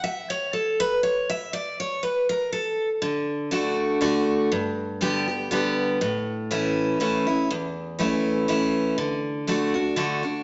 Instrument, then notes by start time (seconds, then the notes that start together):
steel-string acoustic guitar
0.04 E5
0.30 C#5
0.53 A4
0.80 B4
1.03 C#5
1.30 E5
1.53 D5
1.80 C#5
2.03 B4
2.29 A#4
2.52 A4
3.02 D3
3.51 D3 A3 D4 F#4
4.01 D3 A3 D4 F#4
4.52 G2
5.01 D3 G3 B3 G4
5.28 B3 G4
5.51 D3 G3 B3 G4
6.01 A2
6.51 E3 A3 C#4 E4
7.00 E3 A3 C#4 E4
7.27 C#4 E4
7.51 E2
7.99 E3 A3 C#4 E4
8.48 E3 A3 C#4 E4
8.98 D3
9.47 D3 A3 D4 F#4
9.74 D4 F#4
9.96 D3 A3 D4 F#4
10.23 D4 F#4